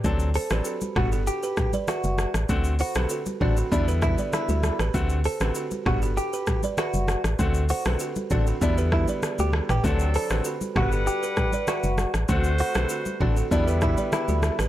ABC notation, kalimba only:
X:1
M:4/4
L:1/16
Q:1/4=98
K:Dmix
V:1 name="Kalimba"
z2 [Ac] [GB] [FA] z [DG] [FA] z [GB] z [Bd] [Be]2 z2 | z2 [Ac] [GB] [FA] z [DF] [FA] z [GB] z [Bd] z [FA] z [GB] | z2 [Ac] [GB] [FA] z [DG] [FA] z [GB] z [Bd] [Be]2 z2 | z2 [Ac] [GB] [FA] z [DF] [FA] z [GB] z [Bd] z [FA] z [GB] |
z2 [Ac] [GB] [FA] z [DG] [FA] z [GB] z [Bd] [Be]2 z2 | z2 [Ac] [GB] [FA] z [DF] [FA] z [GB] z [Bd] z [FA] z [GB] |]